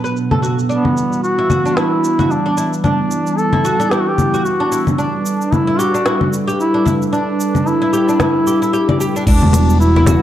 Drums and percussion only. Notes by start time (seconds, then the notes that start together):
0.05 shaker
0.17 shaker
0.31 low conga
0.44 shaker
0.59 shaker
0.70 shaker
0.85 low conga
0.97 shaker
1.13 shaker
1.24 shaker
1.50 low conga, shaker
1.66 shaker
1.77 snare, shaker
2.04 shaker
2.19 low conga, shaker
2.31 shaker
2.58 shaker
2.73 shaker
2.84 low conga, shaker
3.11 shaker
3.27 shaker
3.38 shaker
3.53 low conga
3.65 shaker
3.80 shaker
3.91 snare, shaker
4.18 low conga, shaker
4.34 shaker
4.46 shaker
4.72 shaker
4.87 low conga, shaker
4.99 shaker
5.26 shaker
5.41 shaker
5.53 low conga, shaker
5.80 shaker
5.95 shaker
6.06 snare, shaker
6.21 low conga
6.33 shaker
6.49 shaker
6.60 shaker
6.86 low conga, shaker
7.02 shaker
7.14 shaker
7.40 shaker
7.55 low conga, shaker
7.67 shaker
7.94 shaker
8.09 shaker
8.20 snare, low conga, shaker
8.47 shaker
8.63 shaker
8.74 shaker
8.89 low conga
9.01 shaker
9.16 shaker
9.27 kick, crash, shaker
9.42 low conga
9.53 closed hi-hat, muted conga, shaker
9.70 shaker
9.81 shaker
9.96 high conga
10.06 closed hi-hat, low conga, shaker